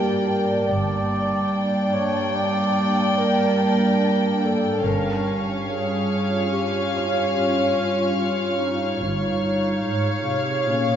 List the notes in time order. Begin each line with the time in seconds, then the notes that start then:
Already playing: G2 A#3 G4 A#4 D5 G5 A5
0.27 A#4
0.67 G1 G2 A#3 D4 D5 G5 A5
1.94 C#5
2.35 D5
3.18 A#4
4.44 A4
4.84 G1 G2 C#4 F4 A#4 C#5 F5 C#6
5.68 G#4 F6
6.51 G4
6.96 C#5 C#6
7.35 F4
8.59 D#4
9.01 G1 G2 D#4 G#4 C#5 F5, reverse cymbal
9.86 G#2
10.27 C3
10.69 A#2 C#4